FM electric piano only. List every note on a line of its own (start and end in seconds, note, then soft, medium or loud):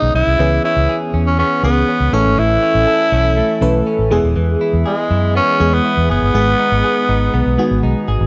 0.00 0.41 D#3 medium
0.00 0.41 G#3 medium
0.00 0.39 B3 medium
0.00 0.15 C#4 medium
0.00 0.40 G#4 medium
0.39 1.05 E3 medium
0.39 1.05 B3 medium
0.39 1.05 C#4 medium
0.39 1.05 G#4 medium
1.63 2.11 E3 medium
1.63 2.12 B3 medium
1.63 2.12 C#4 medium
1.63 2.13 G#4 medium
2.13 2.92 E3 medium
2.13 2.92 A3 medium
2.13 2.92 C#4 medium
2.13 2.93 A4 medium
3.61 4.09 E3 medium
3.61 4.11 A3 medium
3.61 4.11 C#4 medium
3.61 4.11 B4 medium
4.10 4.90 E3 medium
4.10 4.91 G#3 medium
4.10 4.91 B3 medium
4.10 4.91 G#4 loud
5.59 6.09 E3 medium
5.59 6.09 G#3 medium
5.59 6.09 B3 medium
5.59 6.09 G#4 medium
6.34 6.99 D#3 medium
6.34 7.00 G#3 medium
6.34 7.00 B3 medium
6.34 7.00 G#4 medium
7.58 8.07 D#3 medium
7.58 8.07 G#3 medium
7.58 8.08 B3 medium
7.58 8.08 F#4 medium